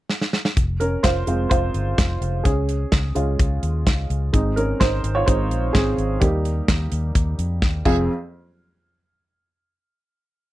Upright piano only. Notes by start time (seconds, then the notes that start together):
0.80 C#4 A#4
1.03 F4 C5
1.27 G#3 C4 F4
1.50 F4 C5
2.44 C#4 G#4
3.15 G#3 C#4 F4
4.33 G#3 C4 D#4
4.56 C#4 A#4
4.80 D#4 C5
5.15 F4 C#5
5.26 G#3 C4 D#4 C5
5.73 C4 G#4
6.20 G3 A#3 D#4 G4
7.85 F2 C4 F4 G#4